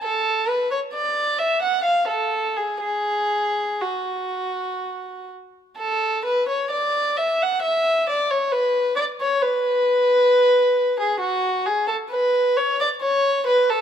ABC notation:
X:1
M:3/4
L:1/16
Q:1/4=67
K:F#m
V:1 name="Violin"
A2 B c d2 e f ^e A2 G | G4 F6 z2 | [K:Bdor] A2 B c d2 e f e2 d c | B2 d c B6- B G |
F2 G A B2 c d c2 B A |]